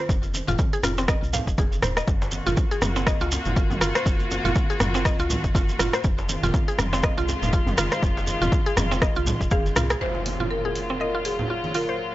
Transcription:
0.09 fm bass F1, kick, djembe tone, shekere
0.23 muted conga, shekere
0.34 high conga, djembe tone, shekere
0.47 fm bass F1, synth pluck F4, high conga, low conga, shekere
0.59 kick, djembe tone, shekere
0.73 synth pluck G#4, shekere
0.83 fm bass F1, synth pluck F4, cross-stick, djembe tone, high conga, low conga, djembe bass, shekere
0.97 synth pluck C4, muted conga, djembe slap, shekere
1.08 synth pluck D#5, kick, cross-stick, djembe tone, shekere
1.22 fm bass C2, shekere
1.33 synth pluck F5, muted conga, high conga, djembe tone, low conga, shekere
1.47 fm bass F1, kick, shekere
1.58 synth pluck G#4, kick, djembe tone, high conga, shekere
1.72 muted conga, shekere
1.82 fm bass D#1, synth pluck C5, cross-stick, djembe tone, low conga, shekere
1.97 synth pluck D#5, cross-stick, shekere
2.08 fm bass F#1, string section A#3 F4 F#4, kick, djembe tone, shekere
2.22 muted conga, djembe slap, shekere
2.31 djembe tone, high conga, shekere
2.46 fm bass F#1, synth pluck F4, high conga, low conga, shekere
2.57 kick, muted conga, djembe tone, shekere
2.71 synth pluck G#4, shekere
2.82 fm bass F#1, cross-stick, mid tom, djembe tone, high conga, djembe bass, shekere
2.96 synth pluck C4, muted conga, djembe slap, shekere
3.07 synth pluck D#5, kick, cross-stick, djembe tone, shekere
3.21 fm bass C#2, synth pluck F4, djembe slap, shekere
3.31 muted conga, djembe tone, shekere
3.45 fm bass F#1, high conga, low conga, shekere
3.56 synth pluck F4, kick, djembe tone, shekere
3.70 mid tom, muted conga, high conga, djembe bass, shekere
3.81 fm bass F#1, synth pluck F4, cross-stick, djembe tone, shekere
3.95 synth pluck C5, cross-stick, shekere
4.06 fm bass F#1, kick, djembe tone, shekere
4.20 muted conga, shekere
4.31 djembe tone, high conga, shekere
4.45 fm bass F#1, synth pluck F4, high conga, low conga, shekere
4.55 kick, djembe tone, shekere
4.70 synth pluck G#4, shekere
4.80 fm bass F#1, cross-stick, mid tom, djembe tone, high conga, low conga, djembe bass, shekere
4.94 synth pluck C4, djembe slap, muted conga, shekere
5.05 synth pluck D#5, kick, cross-stick, djembe tone, shekere
5.19 fm bass C#2, synth pluck F4, shekere
5.30 mid tom, muted conga, high conga, djembe tone, low conga, shekere
5.44 fm bass F#1, kick, shekere
5.54 synth pluck F4, kick, high conga, djembe tone, shekere
5.69 muted conga, shekere
5.79 fm bass F#1, synth pluck F4, cross-stick, djembe tone, low conga, shekere
5.93 synth pluck C5, cross-stick, shekere
6.04 fm bass F1, string section D#3 G#3 F4, kick, djembe tone, shekere
6.18 djembe slap, muted conga, shekere
6.29 high conga, djembe tone, shekere
6.43 fm bass F1, synth pluck F4, high conga, low conga, shekere
6.54 kick, muted conga, djembe tone, shekere
6.68 synth pluck G#4, shekere
6.79 fm bass F1, cross-stick, mid tom, djembe tone, high conga, djembe bass, shekere
6.93 synth pluck C4, djembe slap, muted conga, shekere
7.03 synth pluck D#5, kick, cross-stick, djembe tone, shekere
7.17 fm bass C2, synth pluck F4, djembe slap, shekere
7.28 muted conga, djembe tone, shekere
7.42 fm bass F1, high conga, low conga, shekere
7.53 synth pluck F4, kick, djembe tone, shekere
7.67 mid tom, muted conga, high conga, djembe bass, shekere
7.77 fm bass F1, synth pluck F4, cross-stick, djembe tone, shekere
7.92 synth pluck C5, cross-stick, shekere
8.03 fm bass F1, kick, djembe tone, shekere
8.17 muted conga, djembe slap, shekere
8.27 djembe tone, high conga, shekere
8.41 fm bass F1, synth pluck F4, high conga, low conga, shekere
8.52 kick, muted conga, djembe tone, shekere
8.66 synth pluck G#4, shekere
8.77 fm bass F1, cross-stick, mid tom, high conga, djembe tone, low conga, djembe bass, shekere
8.91 synth pluck C4, djembe slap, muted conga, shekere
9.02 synth pluck D#5, kick, cross-stick, djembe tone, shekere
9.16 fm bass C2, synth pluck F4, shekere
9.26 mid tom, muted conga, high conga, djembe tone, low conga, shekere
9.41 fm bass F1, kick, shekere
9.51 marimba G#4, synth pluck F5, kick, high conga, djembe tone, shekere
9.66 muted conga, shekere
9.76 fm bass C2, synth pluck F4, cross-stick, djembe tone, low conga, shekere
9.90 synth pluck G#4, cross-stick, shekere
10.01 string section A#2 F#3 F4, marimba C5, impact
10.15 muted conga
10.26 open hi-hat, high conga
10.40 synth pluck F4, high conga, low conga
10.51 marimba A#4, muted conga
10.65 synth pluck G#4
10.75 open hi-hat, high conga
10.89 synth pluck C4, muted conga
11.00 marimba A#4, synth pluck D#5
11.15 synth pluck F4
11.25 marimba G#4, open hi-hat, muted conga
11.39 low conga
11.50 synth pluck F4
11.64 muted conga, high conga
11.74 synth pluck F4, marimba A#4, open hi-hat
11.89 synth pluck C5

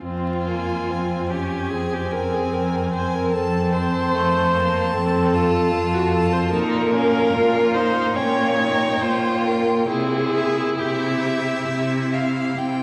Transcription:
0.02 cello F2, violin C4, viola F4
0.46 violin A#3 G#5
0.89 cello F2, violin C4
1.29 violin C#4 G#5, viola G4
1.70 cello F2, violin C4, viola G#4
1.94 viola G4
2.12 viola A#4, violin G#5
2.33 viola G#4
2.52 cello F2, viola A#4
2.93 viola C5, violin G#5
3.14 viola A#4
3.32 cello F2, violin C4 A5, viola A4
3.73 viola C5, violin A5
4.14 cello F2, violin A3
4.54 violin A#3 A5
4.93 cello F2, violin C4, viola A4
5.34 violin F4 A5
5.74 cello F2
5.93 viola F#4
6.13 viola A4, violin A5
6.32 viola C5
6.51 cello A#2, violin D#4, viola A#4
6.94 violin C#4 F5
7.34 cello A#2, violin F4
7.74 violin D#4 F5, viola C5
8.15 cello A#2, violin C#4 G5, viola C#5
8.57 violin D#4 G5
9.01 cello A#2, violin F4, viola C5
9.44 viola A#4, violin G5
9.88 cello C3, violin E4, viola G#4
10.35 violin E5
10.79 cello C3, viola G4, violin E5
11.69 cello C3
12.14 violin F5
12.58 cello C3, violin G5

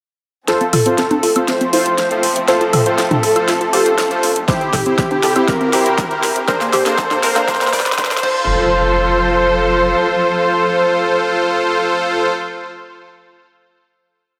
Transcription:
0.48 string section F3 A3 C4, supersaw synth F4 A4 C5, synth pluck A4, analog synth lead A4, snare, closed hi-hat, riser
0.61 synth pluck C4, closed hi-hat
0.73 analog synth bass F1, synth pluck F4, open hi-hat, mid tom, high woodblock
0.86 analog synth bass C2, synth pluck C4, supersaw synth F4 A4 C5, closed hi-hat
0.98 synth pluck C4, analog synth lead A4, snare, closed hi-hat
1.11 synth pluck C4, closed hi-hat, high conga
1.23 analog synth bass F1, synth pluck F4, open hi-hat
1.36 analog synth bass F1, synth pluck C4, supersaw synth F4 A4 C5, closed hi-hat, high woodblock
1.48 synth pluck C4, analog synth lead C5, snare, closed hi-hat
1.61 synth pluck C4, closed hi-hat
1.73 analog synth bass F1, synth pluck E4, supersaw synth F4 A4 C5, open hi-hat
1.86 analog synth bass F1, closed hi-hat
1.98 snare, closed hi-hat
2.11 supersaw synth F4 A4 C5, closed hi-hat
2.23 analog synth bass G1, open hi-hat
2.36 analog synth bass G1, closed hi-hat
2.48 supersaw synth F4 A4 C5, analog synth lead A4, synth pluck C5, snare, closed hi-hat
2.61 synth pluck F4, closed hi-hat
2.73 analog synth bass F1, synth pluck A4, open hi-hat, mid tom, high woodblock
2.86 analog synth bass F1, synth pluck F4, supersaw synth F4 A4 C5, closed hi-hat
2.98 synth pluck F4, snare, closed hi-hat
3.11 synth pluck F4, closed hi-hat, mid tom, high conga
3.23 analog synth bass F1, synth pluck A4, open hi-hat
3.36 analog synth bass F1, synth pluck F4, supersaw synth F4 A4 C5, closed hi-hat, high woodblock
3.48 synth pluck F4, snare, closed hi-hat
3.61 synth pluck F4, closed hi-hat
3.73 analog synth bass F1, supersaw synth F4 A4 C5, synth pluck G4, open hi-hat
3.86 analog synth bass F1, closed hi-hat
3.98 snare, closed hi-hat
4.11 supersaw synth F4 A4 C5, closed hi-hat
4.23 analog synth bass F1, open hi-hat
4.36 analog synth bass F1, closed hi-hat
4.48 string section C3 C4 E4 G4, supersaw synth E4 G4 C5, analog synth lead G4, synth pluck C5, kick, snare, closed hi-hat
4.61 synth pluck C4, closed hi-hat
4.73 analog synth bass C2, synth pluck A4, kick, snare, open hi-hat, mid tom, high woodblock
4.86 synth pluck C4, supersaw synth E4 G4 C5, closed hi-hat
4.98 synth pluck C4, analog synth lead G4, kick, snare, closed hi-hat
5.11 synth pluck C4, closed hi-hat, high conga
5.23 analog synth bass C2, synth pluck A4, snare, open hi-hat
5.36 analog synth bass C2, synth pluck C4, supersaw synth E4 G4 C5, closed hi-hat, high woodblock
5.48 synth pluck C4, analog synth lead A#4, kick, snare, closed hi-hat
5.61 synth pluck C4, closed hi-hat
5.73 analog synth bass C2, supersaw synth E4 G4 C5, synth pluck G4, snare, open hi-hat
5.86 analog synth bass C2, closed hi-hat
5.98 kick, snare, closed hi-hat
6.11 supersaw synth E4 G4 C5, closed hi-hat
6.23 analog synth bass D2, snare, open hi-hat
6.36 analog synth bass D2, closed hi-hat
6.48 string section D3 A#3 C4, supersaw synth D4 A#4 C5, synth pluck A#4, analog synth lead C5, kick, snare, closed hi-hat
6.61 synth pluck A#3, snare, closed hi-hat
6.73 analog synth bass A#1, synth pluck G4, snare, open hi-hat, mid tom, high woodblock
6.86 analog synth bass A#1, synth pluck A#3, supersaw synth D4 A#4 C5, snare, closed hi-hat
6.98 synth pluck A#3, kick, snare, closed hi-hat
7.11 synth pluck A#3, snare, closed hi-hat, mid tom, high conga
7.23 analog synth bass A#1, synth pluck A#4, snare, open hi-hat
7.36 analog synth bass A#1, synth pluck A#3, supersaw synth D4 A#4 C5, snare, closed hi-hat, high woodblock
7.48 synth pluck A#3, kick, snare, closed hi-hat
7.55 snare
7.61 synth pluck A#3, snare, closed hi-hat
7.67 snare
7.73 analog synth bass A#1, synth pluck D5, kick, snare, open hi-hat
7.80 snare
7.86 analog synth bass A#1, snare, closed hi-hat
7.92 snare
7.98 supersaw synth D4 A#4 C5, kick, snare, closed hi-hat
8.05 snare
8.11 snare, closed hi-hat
8.17 snare
8.23 string section F3 F4 A4 C5, supersaw synth F4 A4 C5, analog synth lead C5, synth pluck C5, kick, crash, impact

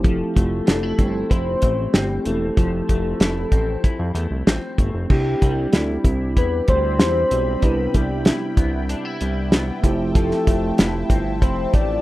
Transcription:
Already playing: analog synth bass F1, tine electric piano A3 C4 E4 G4
0.04 clean electric guitar F3, soft synth lead A4, kick, closed hi-hat
0.35 analog synth bass F1, clean electric guitar A3, kick, closed hi-hat
0.67 analog synth bass F1, clean electric guitar D4, snare, closed hi-hat
0.83 clean electric guitar E4
0.98 analog synth bass G1, clean electric guitar C4, kick, closed hi-hat
1.30 analog synth bass F1, clean electric guitar E4, soft synth lead C5, kick, closed hi-hat
1.62 analog synth bass A1, clean electric guitar A3, kick, closed hi-hat
1.93 analog synth bass G1, clean electric guitar C4, soft synth lead G4, snare, closed hi-hat
2.23 analog synth bass E1, tine electric piano A3 C4 E4, clean electric guitar A3, soft synth lead A4, closed hi-hat
2.28 tine electric piano G4
2.57 analog synth bass F1, clean electric guitar F3, kick, closed hi-hat
2.89 analog synth bass F1, clean electric guitar A3, kick, closed hi-hat
3.20 analog synth bass F1, clean electric guitar E4, snare, closed hi-hat
3.52 analog synth bass A1, clean electric guitar C4, kick, closed hi-hat
3.84 clean electric guitar E4, kick, closed hi-hat
3.99 analog synth bass F2
4.15 analog synth bass E2, clean electric guitar A3, closed hi-hat
4.31 analog synth bass C2
4.47 analog synth bass A1, clean electric guitar C4, snare, closed hi-hat
4.78 analog synth bass G1, clean electric guitar A3, kick, closed hi-hat
4.94 analog synth bass F1
5.08 analog synth bass C2, tine electric piano C4 D4 E4, analog synth pad G4 E5 G5 B5, soft synth lead G4, kick, crash
5.13 tine electric piano G4
5.42 analog synth bass C2, clean electric guitar G3, kick, closed hi-hat
5.73 analog synth bass D2, clean electric guitar E4, snare, closed hi-hat
6.04 analog synth bass C2, kick, closed hi-hat
6.36 analog synth bass E2, clean electric guitar E4, soft synth lead B4, kick, closed hi-hat
6.68 analog synth bass D2, clean electric guitar G3, soft synth lead C5, kick, closed hi-hat
6.99 analog synth bass E2, snare, closed hi-hat
7.31 analog synth bass B1, clean electric guitar G3, closed hi-hat
7.60 analog synth bass C2, clean electric guitar C3, tine electric piano B3 D4 E4, soft synth lead B4, kick, closed hi-hat
7.66 tine electric piano G4
7.94 analog synth bass C2, clean electric guitar G3, soft synth lead G4, kick, closed hi-hat
8.25 clean electric guitar E4, snare, closed hi-hat
8.57 analog synth bass C2, clean electric guitar B3, kick, closed hi-hat
8.89 clean electric guitar D4, closed hi-hat
9.05 clean electric guitar E4
9.21 analog synth bass C2, clean electric guitar G3, closed hi-hat
9.52 clean electric guitar B3, snare, closed hi-hat
9.81 analog synth bass F1, analog synth pad F3 A5, clean electric guitar F3, tine electric piano A3 C4 E4, kick, closed hi-hat
9.86 tine electric piano G4
10.15 clean electric guitar F3, soft synth lead A4, kick, closed hi-hat
10.31 snare
10.47 analog synth bass F1, clean electric guitar A3, kick, closed hi-hat
10.78 analog synth bass F1, clean electric guitar E4, snare, closed hi-hat
11.10 analog synth bass G1, clean electric guitar C4, kick, closed hi-hat
11.42 analog synth bass F1, clean electric guitar E4, soft synth lead C5, kick, closed hi-hat
11.73 analog synth bass A1, clean electric guitar A3, soft synth lead D5, kick, closed hi-hat

